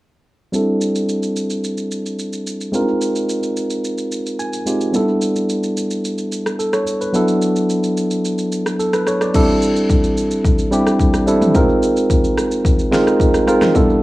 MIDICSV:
0, 0, Header, 1, 3, 480
1, 0, Start_track
1, 0, Tempo, 550459
1, 468, Time_signature, 4, 2, 24, 8
1, 12233, End_track
2, 0, Start_track
2, 0, Title_t, "Tine electric piano"
2, 0, Program_c, 0, 4
2, 455, Note_on_c, 0, 55, 70
2, 462, Note_on_c, 0, 60, 65
2, 469, Note_on_c, 0, 62, 62
2, 477, Note_on_c, 0, 64, 61
2, 482, Note_on_c, 0, 69, 78
2, 605, Control_c, 0, 64, 127
2, 2347, Note_off_c, 0, 55, 0
2, 2350, Note_off_c, 0, 60, 0
2, 2354, Note_off_c, 0, 62, 0
2, 2358, Note_off_c, 0, 64, 0
2, 2361, Note_off_c, 0, 69, 0
2, 2371, Note_on_c, 0, 56, 70
2, 2379, Note_on_c, 0, 60, 66
2, 2386, Note_on_c, 0, 62, 52
2, 2393, Note_on_c, 0, 65, 64
2, 2400, Note_on_c, 0, 70, 75
2, 2401, Control_c, 0, 64, 0
2, 2443, Note_on_c, 0, 63, 65
2, 2446, Note_off_c, 0, 62, 0
2, 2540, Control_c, 0, 64, 127
2, 3831, Note_on_c, 0, 80, 70
2, 4026, Note_off_c, 0, 56, 0
2, 4030, Note_off_c, 0, 60, 0
2, 4037, Note_off_c, 0, 65, 0
2, 4041, Note_off_c, 0, 70, 0
2, 4058, Note_off_c, 0, 63, 0
2, 4062, Note_on_c, 0, 56, 57
2, 4065, Note_on_c, 0, 60, 51
2, 4069, Note_on_c, 0, 63, 52
2, 4072, Note_on_c, 0, 65, 52
2, 4077, Note_on_c, 0, 67, 65
2, 4276, Note_off_c, 0, 80, 0
2, 4295, Note_on_c, 0, 55, 71
2, 4302, Note_on_c, 0, 59, 64
2, 4305, Note_off_c, 0, 56, 0
2, 4307, Note_off_c, 0, 60, 0
2, 4309, Note_off_c, 0, 63, 0
2, 4309, Note_on_c, 0, 61, 52
2, 4310, Note_off_c, 0, 65, 0
2, 4313, Note_off_c, 0, 67, 0
2, 4316, Note_on_c, 0, 64, 66
2, 4319, Control_c, 0, 64, 0
2, 4323, Note_on_c, 0, 69, 75
2, 4365, Note_on_c, 0, 62, 65
2, 4367, Note_off_c, 0, 61, 0
2, 4481, Control_c, 0, 64, 127
2, 5727, Note_off_c, 0, 69, 0
2, 5748, Note_on_c, 0, 69, 63
2, 5867, Note_off_c, 0, 69, 0
2, 5872, Note_on_c, 0, 73, 68
2, 5948, Note_off_c, 0, 55, 0
2, 5951, Note_off_c, 0, 59, 0
2, 5958, Note_off_c, 0, 64, 0
2, 5984, Note_off_c, 0, 62, 0
2, 6100, Note_off_c, 0, 73, 0
2, 6112, Note_on_c, 0, 71, 65
2, 6214, Note_on_c, 0, 54, 72
2, 6222, Note_on_c, 0, 59, 67
2, 6228, Note_on_c, 0, 62, 63
2, 6235, Note_on_c, 0, 64, 67
2, 6239, Control_c, 0, 64, 0
2, 6242, Note_on_c, 0, 69, 80
2, 6341, Note_off_c, 0, 71, 0
2, 6388, Control_c, 0, 64, 127
2, 7632, Note_off_c, 0, 54, 0
2, 7637, Note_off_c, 0, 59, 0
2, 7639, Note_off_c, 0, 62, 0
2, 7643, Note_off_c, 0, 64, 0
2, 7646, Note_off_c, 0, 69, 0
2, 7668, Note_on_c, 0, 69, 64
2, 7787, Note_off_c, 0, 69, 0
2, 7795, Note_on_c, 0, 71, 72
2, 7903, Note_off_c, 0, 71, 0
2, 7912, Note_on_c, 0, 73, 71
2, 8029, Note_off_c, 0, 73, 0
2, 8036, Note_on_c, 0, 74, 62
2, 8144, Note_on_c, 0, 55, 80
2, 8148, Note_on_c, 0, 60, 74
2, 8153, Note_on_c, 0, 62, 73
2, 8156, Note_on_c, 0, 64, 72
2, 8158, Control_c, 0, 64, 0
2, 8159, Note_on_c, 0, 69, 87
2, 8263, Note_off_c, 0, 74, 0
2, 8332, Control_c, 0, 64, 127
2, 8916, Note_off_c, 0, 55, 0
2, 8918, Note_off_c, 0, 60, 0
2, 8921, Note_off_c, 0, 62, 0
2, 8922, Note_off_c, 0, 64, 0
2, 8923, Note_off_c, 0, 69, 0
2, 9342, Note_on_c, 0, 55, 86
2, 9346, Note_on_c, 0, 60, 76
2, 9349, Note_on_c, 0, 62, 77
2, 9353, Note_on_c, 0, 64, 76
2, 9357, Note_on_c, 0, 67, 94
2, 9733, Note_off_c, 0, 55, 0
2, 9735, Note_off_c, 0, 60, 0
2, 9737, Note_off_c, 0, 62, 0
2, 9739, Note_off_c, 0, 64, 0
2, 9741, Note_off_c, 0, 67, 0
2, 9823, Note_on_c, 0, 55, 78
2, 9826, Note_on_c, 0, 60, 73
2, 9830, Note_on_c, 0, 62, 75
2, 9834, Note_on_c, 0, 64, 75
2, 9837, Note_on_c, 0, 69, 85
2, 10020, Note_off_c, 0, 55, 0
2, 10021, Note_off_c, 0, 60, 0
2, 10023, Note_off_c, 0, 62, 0
2, 10025, Note_off_c, 0, 64, 0
2, 10026, Note_off_c, 0, 69, 0
2, 10064, Note_on_c, 0, 56, 82
2, 10069, Note_on_c, 0, 60, 74
2, 10072, Note_on_c, 0, 63, 74
2, 10076, Note_on_c, 0, 65, 76
2, 10078, Control_c, 0, 64, 0
2, 10079, Note_on_c, 0, 70, 91
2, 10249, Control_c, 0, 64, 127
2, 10836, Note_off_c, 0, 56, 0
2, 10839, Note_off_c, 0, 60, 0
2, 10840, Note_off_c, 0, 63, 0
2, 10842, Note_off_c, 0, 65, 0
2, 10843, Note_off_c, 0, 70, 0
2, 11262, Note_on_c, 0, 56, 90
2, 11264, Note_on_c, 0, 60, 77
2, 11269, Note_on_c, 0, 63, 79
2, 11272, Note_on_c, 0, 65, 78
2, 11275, Note_on_c, 0, 70, 91
2, 11653, Note_off_c, 0, 56, 0
2, 11654, Note_off_c, 0, 60, 0
2, 11656, Note_off_c, 0, 63, 0
2, 11658, Note_off_c, 0, 65, 0
2, 11660, Note_off_c, 0, 70, 0
2, 11741, Note_on_c, 0, 56, 80
2, 11745, Note_on_c, 0, 60, 73
2, 11750, Note_on_c, 0, 63, 75
2, 11752, Note_on_c, 0, 65, 74
2, 11755, Note_on_c, 0, 70, 84
2, 11939, Note_off_c, 0, 56, 0
2, 11940, Note_off_c, 0, 60, 0
2, 11943, Note_off_c, 0, 63, 0
2, 11944, Note_off_c, 0, 65, 0
2, 11946, Note_off_c, 0, 70, 0
2, 11982, Note_on_c, 0, 55, 82
2, 11985, Note_on_c, 0, 59, 78
2, 11989, Note_on_c, 0, 62, 77
2, 11993, Note_on_c, 0, 64, 75
2, 11996, Note_on_c, 0, 69, 88
2, 11999, Control_c, 0, 64, 0
2, 12154, Control_c, 0, 64, 127
2, 12233, Note_off_c, 0, 55, 0
2, 12233, Note_off_c, 0, 59, 0
2, 12233, Note_off_c, 0, 62, 0
2, 12233, Note_off_c, 0, 64, 0
2, 12233, Note_off_c, 0, 69, 0
2, 12233, End_track
3, 0, Start_track
3, 0, Title_t, "Drums"
3, 468, Note_on_c, 9, 82, 69
3, 555, Note_off_c, 9, 82, 0
3, 708, Note_on_c, 9, 82, 84
3, 796, Note_off_c, 9, 82, 0
3, 832, Note_on_c, 9, 82, 57
3, 919, Note_off_c, 9, 82, 0
3, 950, Note_on_c, 9, 82, 72
3, 1037, Note_off_c, 9, 82, 0
3, 1071, Note_on_c, 9, 82, 51
3, 1158, Note_off_c, 9, 82, 0
3, 1189, Note_on_c, 9, 82, 90
3, 1277, Note_off_c, 9, 82, 0
3, 1309, Note_on_c, 9, 82, 60
3, 1396, Note_off_c, 9, 82, 0
3, 1431, Note_on_c, 9, 82, 73
3, 1519, Note_off_c, 9, 82, 0
3, 1548, Note_on_c, 9, 82, 50
3, 1635, Note_off_c, 9, 82, 0
3, 1670, Note_on_c, 9, 82, 85
3, 1757, Note_off_c, 9, 82, 0
3, 1796, Note_on_c, 9, 82, 48
3, 1884, Note_off_c, 9, 82, 0
3, 1910, Note_on_c, 9, 82, 62
3, 1997, Note_off_c, 9, 82, 0
3, 2031, Note_on_c, 9, 82, 58
3, 2118, Note_off_c, 9, 82, 0
3, 2152, Note_on_c, 9, 82, 95
3, 2239, Note_off_c, 9, 82, 0
3, 2274, Note_on_c, 9, 82, 51
3, 2361, Note_off_c, 9, 82, 0
3, 2388, Note_on_c, 9, 82, 68
3, 2475, Note_off_c, 9, 82, 0
3, 2628, Note_on_c, 9, 82, 84
3, 2715, Note_off_c, 9, 82, 0
3, 2753, Note_on_c, 9, 82, 57
3, 2840, Note_off_c, 9, 82, 0
3, 2871, Note_on_c, 9, 82, 75
3, 2959, Note_off_c, 9, 82, 0
3, 2993, Note_on_c, 9, 82, 51
3, 3080, Note_off_c, 9, 82, 0
3, 3112, Note_on_c, 9, 82, 89
3, 3199, Note_off_c, 9, 82, 0
3, 3229, Note_on_c, 9, 82, 62
3, 3316, Note_off_c, 9, 82, 0
3, 3354, Note_on_c, 9, 82, 72
3, 3441, Note_off_c, 9, 82, 0
3, 3470, Note_on_c, 9, 82, 49
3, 3558, Note_off_c, 9, 82, 0
3, 3592, Note_on_c, 9, 82, 84
3, 3679, Note_off_c, 9, 82, 0
3, 3719, Note_on_c, 9, 82, 51
3, 3806, Note_off_c, 9, 82, 0
3, 3833, Note_on_c, 9, 82, 62
3, 3920, Note_off_c, 9, 82, 0
3, 3951, Note_on_c, 9, 82, 59
3, 4039, Note_off_c, 9, 82, 0
3, 4072, Note_on_c, 9, 82, 100
3, 4159, Note_off_c, 9, 82, 0
3, 4194, Note_on_c, 9, 82, 51
3, 4281, Note_off_c, 9, 82, 0
3, 4308, Note_on_c, 9, 82, 72
3, 4395, Note_off_c, 9, 82, 0
3, 4548, Note_on_c, 9, 82, 84
3, 4636, Note_off_c, 9, 82, 0
3, 4674, Note_on_c, 9, 82, 58
3, 4761, Note_off_c, 9, 82, 0
3, 4792, Note_on_c, 9, 82, 73
3, 4879, Note_off_c, 9, 82, 0
3, 4913, Note_on_c, 9, 82, 50
3, 5000, Note_off_c, 9, 82, 0
3, 5033, Note_on_c, 9, 82, 86
3, 5120, Note_off_c, 9, 82, 0
3, 5150, Note_on_c, 9, 82, 63
3, 5238, Note_off_c, 9, 82, 0
3, 5274, Note_on_c, 9, 82, 74
3, 5361, Note_off_c, 9, 82, 0
3, 5390, Note_on_c, 9, 82, 48
3, 5477, Note_off_c, 9, 82, 0
3, 5511, Note_on_c, 9, 82, 84
3, 5599, Note_off_c, 9, 82, 0
3, 5635, Note_on_c, 9, 37, 82
3, 5639, Note_on_c, 9, 82, 50
3, 5722, Note_off_c, 9, 37, 0
3, 5726, Note_off_c, 9, 82, 0
3, 5753, Note_on_c, 9, 82, 64
3, 5841, Note_off_c, 9, 82, 0
3, 5870, Note_on_c, 9, 37, 92
3, 5871, Note_on_c, 9, 82, 59
3, 5957, Note_off_c, 9, 37, 0
3, 5958, Note_off_c, 9, 82, 0
3, 5992, Note_on_c, 9, 82, 99
3, 6079, Note_off_c, 9, 82, 0
3, 6116, Note_on_c, 9, 82, 52
3, 6203, Note_off_c, 9, 82, 0
3, 6229, Note_on_c, 9, 82, 74
3, 6316, Note_off_c, 9, 82, 0
3, 6348, Note_on_c, 9, 82, 49
3, 6435, Note_off_c, 9, 82, 0
3, 6469, Note_on_c, 9, 82, 79
3, 6556, Note_off_c, 9, 82, 0
3, 6592, Note_on_c, 9, 82, 59
3, 6680, Note_off_c, 9, 82, 0
3, 6712, Note_on_c, 9, 82, 75
3, 6799, Note_off_c, 9, 82, 0
3, 6833, Note_on_c, 9, 82, 51
3, 6920, Note_off_c, 9, 82, 0
3, 6952, Note_on_c, 9, 82, 91
3, 7039, Note_off_c, 9, 82, 0
3, 7069, Note_on_c, 9, 82, 64
3, 7157, Note_off_c, 9, 82, 0
3, 7194, Note_on_c, 9, 82, 76
3, 7281, Note_off_c, 9, 82, 0
3, 7310, Note_on_c, 9, 82, 50
3, 7397, Note_off_c, 9, 82, 0
3, 7430, Note_on_c, 9, 82, 90
3, 7517, Note_off_c, 9, 82, 0
3, 7553, Note_on_c, 9, 37, 90
3, 7556, Note_on_c, 9, 82, 49
3, 7640, Note_off_c, 9, 37, 0
3, 7644, Note_off_c, 9, 82, 0
3, 7672, Note_on_c, 9, 82, 63
3, 7759, Note_off_c, 9, 82, 0
3, 7790, Note_on_c, 9, 37, 91
3, 7791, Note_on_c, 9, 82, 59
3, 7877, Note_off_c, 9, 37, 0
3, 7878, Note_off_c, 9, 82, 0
3, 7906, Note_on_c, 9, 37, 88
3, 7911, Note_on_c, 9, 82, 98
3, 7993, Note_off_c, 9, 37, 0
3, 7998, Note_off_c, 9, 82, 0
3, 8032, Note_on_c, 9, 37, 90
3, 8035, Note_on_c, 9, 82, 51
3, 8119, Note_off_c, 9, 37, 0
3, 8122, Note_off_c, 9, 82, 0
3, 8148, Note_on_c, 9, 49, 93
3, 8148, Note_on_c, 9, 82, 73
3, 8149, Note_on_c, 9, 36, 107
3, 8235, Note_off_c, 9, 49, 0
3, 8235, Note_off_c, 9, 82, 0
3, 8236, Note_off_c, 9, 36, 0
3, 8389, Note_on_c, 9, 82, 86
3, 8476, Note_off_c, 9, 82, 0
3, 8513, Note_on_c, 9, 82, 60
3, 8600, Note_off_c, 9, 82, 0
3, 8629, Note_on_c, 9, 36, 96
3, 8632, Note_on_c, 9, 82, 77
3, 8716, Note_off_c, 9, 36, 0
3, 8719, Note_off_c, 9, 82, 0
3, 8752, Note_on_c, 9, 82, 52
3, 8839, Note_off_c, 9, 82, 0
3, 8871, Note_on_c, 9, 82, 89
3, 8958, Note_off_c, 9, 82, 0
3, 8990, Note_on_c, 9, 82, 65
3, 9077, Note_off_c, 9, 82, 0
3, 9108, Note_on_c, 9, 36, 112
3, 9114, Note_on_c, 9, 82, 78
3, 9196, Note_off_c, 9, 36, 0
3, 9201, Note_off_c, 9, 82, 0
3, 9231, Note_on_c, 9, 82, 52
3, 9318, Note_off_c, 9, 82, 0
3, 9352, Note_on_c, 9, 82, 89
3, 9439, Note_off_c, 9, 82, 0
3, 9475, Note_on_c, 9, 37, 89
3, 9479, Note_on_c, 9, 82, 50
3, 9563, Note_off_c, 9, 37, 0
3, 9566, Note_off_c, 9, 82, 0
3, 9588, Note_on_c, 9, 36, 96
3, 9594, Note_on_c, 9, 82, 63
3, 9675, Note_off_c, 9, 36, 0
3, 9681, Note_off_c, 9, 82, 0
3, 9712, Note_on_c, 9, 37, 91
3, 9713, Note_on_c, 9, 82, 61
3, 9799, Note_off_c, 9, 37, 0
3, 9800, Note_off_c, 9, 82, 0
3, 9833, Note_on_c, 9, 82, 102
3, 9920, Note_off_c, 9, 82, 0
3, 9955, Note_on_c, 9, 45, 87
3, 9958, Note_on_c, 9, 82, 52
3, 10042, Note_off_c, 9, 45, 0
3, 10045, Note_off_c, 9, 82, 0
3, 10069, Note_on_c, 9, 36, 106
3, 10069, Note_on_c, 9, 82, 76
3, 10156, Note_off_c, 9, 82, 0
3, 10157, Note_off_c, 9, 36, 0
3, 10312, Note_on_c, 9, 82, 81
3, 10400, Note_off_c, 9, 82, 0
3, 10435, Note_on_c, 9, 82, 58
3, 10522, Note_off_c, 9, 82, 0
3, 10550, Note_on_c, 9, 36, 93
3, 10554, Note_on_c, 9, 82, 78
3, 10637, Note_off_c, 9, 36, 0
3, 10641, Note_off_c, 9, 82, 0
3, 10675, Note_on_c, 9, 82, 52
3, 10762, Note_off_c, 9, 82, 0
3, 10791, Note_on_c, 9, 37, 97
3, 10795, Note_on_c, 9, 82, 90
3, 10878, Note_off_c, 9, 37, 0
3, 10882, Note_off_c, 9, 82, 0
3, 10912, Note_on_c, 9, 82, 65
3, 10999, Note_off_c, 9, 82, 0
3, 11029, Note_on_c, 9, 36, 113
3, 11036, Note_on_c, 9, 82, 77
3, 11117, Note_off_c, 9, 36, 0
3, 11124, Note_off_c, 9, 82, 0
3, 11153, Note_on_c, 9, 82, 52
3, 11240, Note_off_c, 9, 82, 0
3, 11276, Note_on_c, 9, 38, 66
3, 11276, Note_on_c, 9, 82, 93
3, 11363, Note_off_c, 9, 38, 0
3, 11363, Note_off_c, 9, 82, 0
3, 11398, Note_on_c, 9, 37, 92
3, 11402, Note_on_c, 9, 82, 51
3, 11485, Note_off_c, 9, 37, 0
3, 11489, Note_off_c, 9, 82, 0
3, 11509, Note_on_c, 9, 36, 91
3, 11516, Note_on_c, 9, 82, 64
3, 11596, Note_off_c, 9, 36, 0
3, 11604, Note_off_c, 9, 82, 0
3, 11634, Note_on_c, 9, 37, 95
3, 11635, Note_on_c, 9, 82, 61
3, 11722, Note_off_c, 9, 37, 0
3, 11722, Note_off_c, 9, 82, 0
3, 11751, Note_on_c, 9, 37, 92
3, 11755, Note_on_c, 9, 82, 99
3, 11838, Note_off_c, 9, 37, 0
3, 11843, Note_off_c, 9, 82, 0
3, 11876, Note_on_c, 9, 37, 95
3, 11876, Note_on_c, 9, 38, 71
3, 11876, Note_on_c, 9, 45, 86
3, 11879, Note_on_c, 9, 82, 54
3, 11963, Note_off_c, 9, 37, 0
3, 11963, Note_off_c, 9, 38, 0
3, 11963, Note_off_c, 9, 45, 0
3, 11966, Note_off_c, 9, 82, 0
3, 11990, Note_on_c, 9, 36, 107
3, 11991, Note_on_c, 9, 82, 72
3, 12077, Note_off_c, 9, 36, 0
3, 12079, Note_off_c, 9, 82, 0
3, 12233, End_track
0, 0, End_of_file